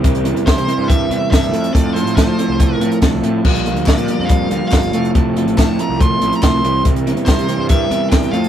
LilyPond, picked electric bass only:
\new Staff \with { instrumentName = "Picked electric bass" } { \clef bass \time 4/4 \key f \major \tempo 4 = 141 c,8. e,8 c16 r16 g,8. e,16 r16 g,8 f,8 | f,8. a,8 f16 r16 c,8. a,16 r16 c,8 a,8 | bes,,8. d,8 bes,16 r16 f,8. d,16 r16 g,,8 f,,8 | f,,8. a,,8 f,16 r16 c,8. a,,16 r16 c,8 c,8 |
c,8. e,8 c16 r16 g,8. e,16 r16 e,8 f,8 | }